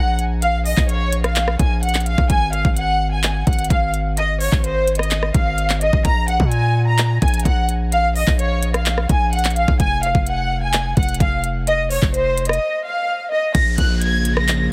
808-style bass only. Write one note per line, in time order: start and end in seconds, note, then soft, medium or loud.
0.00 0.74 A#1 loud
0.77 1.56 A#1 loud
1.59 2.16 A#1 loud
2.18 2.29 A#1 loud
2.30 2.63 G#1 loud
2.65 3.44 G#1 loud
3.47 3.69 G#1 loud
3.70 4.49 G#1 loud
4.52 5.31 G#1 loud
5.34 5.91 G#1 loud
5.93 6.04 G#1 loud
6.05 6.38 A#1 loud
6.40 7.19 A#2 loud
7.22 7.44 A#1 loud
7.45 8.24 A#1 loud
8.27 9.06 A#1 loud
9.09 9.66 A#1 loud
9.68 9.79 A#1 loud
9.80 10.13 F1 loud
10.15 10.94 F1 loud
10.97 11.19 F1 loud
11.20 11.99 F1 loud
12.02 12.59 F1 loud
13.55 13.77 A#1 loud
13.78 14.68 A#1 loud